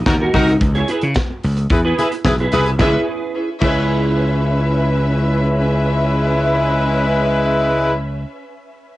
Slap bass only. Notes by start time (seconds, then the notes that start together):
0.06 D#2
0.34 C2
0.61 C#2
1.03 C#3
1.44 C#2
1.70 E2
2.25 B1
2.53 C2
2.80 C#2
3.62 C#2